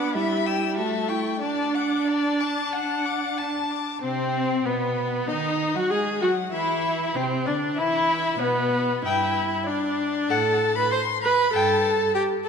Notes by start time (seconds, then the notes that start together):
Already playing: B3 D4 F#5 D6
0.14 G3 E4 E5 B5
0.46 G5 E6
0.76 A3 F#4 E5 A5
1.08 E4 G5 C#6
1.41 D4 D5 A5
1.75 F#5 D6
2.07 D5 A5
2.40 A5 D6
2.73 F#5 A5
3.05 D6
3.38 A5
3.71 D6
4.02 C3 C4 C5
4.65 B2 B3 B4
5.28 D#3 D#4 D#5
5.74 F#3 F#4 F#5
5.90 G#3 G#4 G#5
6.21 F#3 F#4 F#5
6.52 E3 E4 E5
7.15 C3 C4 C5
7.46 D3 D4 D5
7.77 E3 E4 E5
8.40 B2 B3 B4
9.04 G2 E4 E5 G5
9.66 D4 D5
10.29 A2 A4 F#5 A5
10.75 B4 B5
10.91 C5 C6
11.22 B4 B5
11.53 G2 A4 G5 A5
12.15 G4 G5
12.45 A5